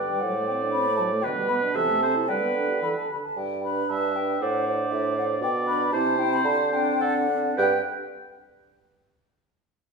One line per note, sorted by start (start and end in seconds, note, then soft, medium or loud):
0.00 0.23 G2 medium
0.00 0.12 D3 soft
0.00 0.24 B4 soft
0.00 1.25 D5 medium
0.00 0.21 G5 medium
0.11 0.22 G3 soft
0.20 1.25 A2 medium
0.20 1.23 C5 soft
0.20 0.46 F#5 medium
0.24 0.38 F#3 medium
0.36 0.51 A3 soft
0.46 0.64 C4 soft
0.46 0.52 G5 medium
0.62 0.76 D4 medium
0.72 0.89 C4 soft
0.72 0.96 B5 medium
0.87 1.01 A3 medium
0.96 1.13 F#3 medium
0.96 1.02 A5 medium
1.12 1.24 A3 medium
1.21 1.76 B2 medium
1.21 1.39 D3 medium
1.21 1.77 B4 medium
1.21 1.27 G5 medium
1.37 1.51 G3 medium
1.48 1.64 B3 medium
1.48 1.54 B5 medium
1.62 1.75 D4 medium
1.72 2.30 C3 medium
1.72 1.90 E3 medium
1.72 2.31 A4 medium
1.72 2.02 E5 medium
1.72 2.30 A5 loud
1.89 2.04 A3 medium
2.02 2.17 C4 medium
2.02 2.15 C5 medium
2.15 2.29 E4 medium
2.28 3.10 D3 medium
2.28 2.44 G3 medium
2.28 2.84 B4 medium
2.28 3.08 B4 medium
2.28 2.82 G5 medium
2.42 2.58 B3 soft
2.56 2.70 D4 soft
2.69 2.81 G4 soft
2.82 2.94 E3 medium
2.82 3.10 A4 soft
2.82 2.89 B5 medium
2.97 3.10 A5 medium
3.09 3.22 D3 soft
3.09 3.18 B5 medium
3.23 3.39 A5 medium
3.36 3.84 G2 medium
3.36 3.63 G5 medium
3.63 4.14 D4 soft
3.63 4.15 B4 soft
3.63 3.91 B5 medium
3.89 4.35 G2 medium
3.89 4.43 E5 medium
3.89 4.17 A5 medium
4.15 4.40 D4 soft
4.15 4.40 B4 soft
4.15 4.40 G5 medium
4.40 4.85 A2 medium
4.40 4.66 D4 soft
4.40 4.66 C5 soft
4.40 5.41 D5 medium
4.40 4.92 F#5 medium
4.67 5.16 D4 medium
4.67 5.16 C5 soft
4.91 5.36 A2 medium
4.91 5.16 E5 medium
5.16 5.41 D4 soft
5.16 5.41 C5 medium
5.16 5.24 F#5 medium
5.41 5.86 B2 medium
5.41 5.92 D5 medium
5.41 5.49 G5 medium
5.67 5.92 D4 medium
5.67 5.92 B4 medium
5.67 5.94 B5 medium
5.92 6.39 C3 medium
5.92 6.18 C4 medium
5.92 6.18 E4 medium
5.92 6.99 C5 medium
5.92 6.20 A5 loud
6.18 6.44 C4 medium
6.18 6.44 E4 medium
6.18 6.35 G5 medium
6.33 6.47 B5 medium
6.44 6.93 D3 medium
6.44 6.75 A5 medium
6.72 7.29 C4 medium
6.72 7.28 D4 medium
6.72 7.03 G5 loud
7.00 7.52 D3 medium
7.00 7.14 A4 medium
7.00 7.58 F#5 medium
7.29 7.58 C4 medium
7.29 7.56 D4 medium
7.57 7.81 G2 medium
7.57 7.82 G4 medium
7.57 7.80 B4 medium
7.57 7.81 G5 medium
7.57 7.89 G5 medium